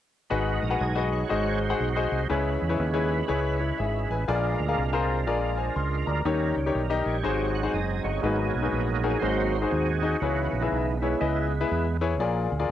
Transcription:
0.30 G#1 G#2 G#3 D#4 F#4 G#4 B4 D#5
0.61 A#1 A#4 D#5
0.70 F#4 G#4 B4 F#5
0.79 B1 D#5 G#5
0.95 F#4 G#4 B4 D#5
1.12 C#5 F#5
1.29 G#1 G#2 G#3 D#4 F#4 G#4 C5 D#5
1.70 F#4 G#4 C5 F#5
1.80 B1
1.96 F#4 G#4 C5 D#5
2.12 C2
2.29 C#2 C#3 G#3 C#4 E4 G#4 B4 C#5
2.62 E2
2.69 E4 G#4 B4 C#5
2.80 D#2
2.93 E4 G#4 B4 C#5
3.28 C#2 E4 G#4 B4 C#5
3.60 E4 C#5
3.78 G#1 G#4 E5
4.10 A1 B4 G#5
4.28 A#1 A#2 G#3 D4 F4 G#4 A4 A#4 D5
4.35 A#4
4.59 D2
4.68 F4 G#4 A#4 F5
4.78 C2
4.93 F4 G#4 A#4 C5
5.27 A#1 F4 G#4 A#4 D5
5.58 C5 G#5
5.76 C#2 C6
6.07 D2 D5 A#5
6.25 D#2 D#3 G3 C#4 D#4 G4 A#4 C#5
6.56 C#2 C#4 G4
6.66 D#4 G4 A#4 C#5
6.75 B1 D#4 A#4
6.90 D#4 G4 A#4 D#5
7.05 A#1 G4 C#5
7.23 G#1 G#2 F#3 C4 D#4 F#4 G#4 C5
7.55 F#5
7.63 D#4 F#4 G#4 C5
7.73 F#1 C5 D#5 G#5
8.04 G1 F#4 C#5 D#5
8.21 G#1 G#2 F#3 A#3 B3 D#4 F#4 G#4 B4
8.55 B1
8.62 D#4 F#4 G#4 B4
8.72 A#1
9.03 D#4 F#4 G#4 A#4
9.20 G#1 G#2 F#3 A#3 C4 D#4 F#4 G#4 C5
9.62 D#4 F#4 G#4 C5
9.69 D#2 C4 D#4 G#4
10.02 D#4 F#4 G#4 D#5
10.20 C#2 C#3 E3 B3 D#4 E4 F#4 G#4 B4 C#5
10.53 A#1
10.62 E4 G#4 B4 E5
10.72 B1
11.01 G#3 B3 E4 G#4 B4 C#5
11.21 C#2 E4 G#4 B4 D#5
11.61 E4 G#4 B4 E5
11.71 E2
12.01 E4 G#4 B4 C#5
12.20 A#1 A#2 F4 G#4 A#4 D5
12.52 D2
12.59 F4 G#4 A#4 D5

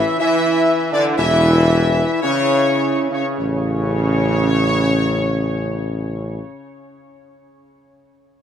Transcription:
Already playing: E3 E4 E5
0.19 E3 E4 E5
0.93 D3 D4 D5
1.17 E1 E3 E4 E5
2.22 C#3 C#4 C#5
3.10 C#3 C#4 C#5
3.39 A1 C#3 C#4 C#5

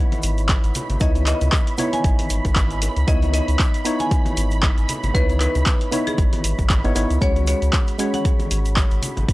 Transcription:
Already playing: B3 D#4 E4 C#5 F#5 B5
0.12 closed hi-hat, high conga, shaker
0.23 G#1, open hi-hat, shaker
0.38 closed hi-hat, shaker
0.49 kick, clap, closed hi-hat, shaker
0.64 G#1, closed hi-hat, shaker
0.75 open hi-hat, low conga, shaker
0.90 G#1, closed hi-hat, low conga, shaker
1.00 C#2 B3 D#4 E4 C#5 D#5, kick, closed hi-hat, shaker
1.15 closed hi-hat, high conga, shaker
1.26 D#5, clap, open hi-hat, high bongo, shaker
1.41 C#2, closed hi-hat, low conga, shaker
1.52 kick, clap, closed hi-hat, shaker
1.67 closed hi-hat, shaker
1.78 B3 D#4 E4 C#5, open hi-hat, low conga, shaker
1.93 G#5, closed hi-hat, high conga, shaker
2.04 G#1, kick, closed hi-hat, shaker
2.19 open hi-hat, high conga, shaker
2.30 G#1, open hi-hat, shaker
2.45 G#1, kick, closed hi-hat, high bongo, shaker
2.56 kick, clap, closed hi-hat, shaker
2.71 closed hi-hat, shaker
2.82 open hi-hat, high bongo, shaker
2.96 C#2, closed hi-hat, shaker
3.07 C#2 B3 D#4 E4 C#5 D#5, kick, closed hi-hat, shaker
3.22 closed hi-hat, high conga, shaker
3.33 D#5, open hi-hat, high bongo, shaker
3.48 C#2, closed hi-hat, shaker
3.59 kick, clap, closed hi-hat, shaker
3.74 closed hi-hat, shaker
3.85 B3 D#4 E4 C#5, open hi-hat, shaker
3.99 G#5, closed hi-hat, high conga, shaker
4.11 kick, closed hi-hat, shaker
4.25 closed hi-hat, high conga, shaker
4.37 G#1, open hi-hat, shaker
4.51 closed hi-hat, shaker
4.63 kick, clap, closed hi-hat, shaker
4.78 G#1, closed hi-hat, shaker
4.89 open hi-hat, low conga, shaker
5.03 G#1, closed hi-hat, low conga, shaker
5.14 C#2 B3 D#4 E4 B4 C#5, kick, closed hi-hat, shaker
5.29 closed hi-hat, high conga, shaker
5.40 B4, clap, open hi-hat, high bongo, shaker
5.55 C#2, closed hi-hat, low conga, shaker
5.66 kick, clap, closed hi-hat, shaker
5.80 closed hi-hat, shaker
5.91 B3 D#4 E4 C#5, open hi-hat, low conga, shaker
6.07 G#4, closed hi-hat, high conga, shaker
6.18 G#1, kick, closed hi-hat, shaker
6.33 open hi-hat, high conga, shaker
6.44 G#1, open hi-hat, shaker
6.59 G#1, kick, closed hi-hat, high bongo, shaker
6.70 kick, clap, closed hi-hat, shaker
6.84 G#1 B3 D#4 E4 C#5, closed hi-hat, shaker
6.95 G#1 B3 D#4 E4 C#5, open hi-hat, high bongo, shaker
7.10 C#2, closed hi-hat, shaker
7.21 C#2 G#3 C#4 F#4 C#5, kick, closed hi-hat, shaker
7.36 closed hi-hat, high conga, shaker
7.47 C#5, open hi-hat, high bongo, shaker
7.62 C#2, closed hi-hat, shaker
7.73 kick, clap, closed hi-hat, shaker
7.87 closed hi-hat, shaker
7.98 G#3 C#4 F#4 C#5, open hi-hat, shaker
8.14 F#5, closed hi-hat, high conga, shaker
8.25 kick, closed hi-hat, shaker
8.39 closed hi-hat, high conga, shaker
8.51 G#1, open hi-hat, shaker
8.65 closed hi-hat, shaker
8.76 kick, clap, closed hi-hat, shaker
8.91 G#1, closed hi-hat, shaker
9.02 open hi-hat, low conga, shaker
9.17 G#1, closed hi-hat, low conga, shaker
9.28 C#2, kick, closed hi-hat, shaker

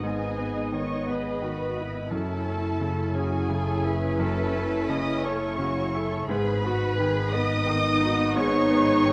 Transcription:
Already playing: G#1 B3 D#4 D#5
0.03 G#2 G#4 G#5
0.38 B3
0.72 D#3 C#5 C#6
1.07 B3 G#4 B4 B5
1.42 D#3 F#4
1.77 E4 D#5
2.11 F#1 F#2 C#4 E4 A4 A5
2.46 C#4
2.80 C#3
3.15 C#4 F#4 G#4 G#5
3.50 C#3 A4
3.85 E4 B4
4.19 F#2 A4 A5
4.56 C#4
4.89 C#3 D#5 D#6
5.24 C#4 A4 C#5 C#6
5.59 C#3 F#4
5.94 E4 A4
6.28 G#1 G#2 B3 D#4 G#4 B4 B5
6.64 B3 F#4
6.99 D#3 G#4
7.32 B3 B4 D#5 D#6
7.67 D#3 D#4
8.01 D#4 F#4
8.36 G#2 G#4 C#5 C#6
8.70 B3
9.06 D#3

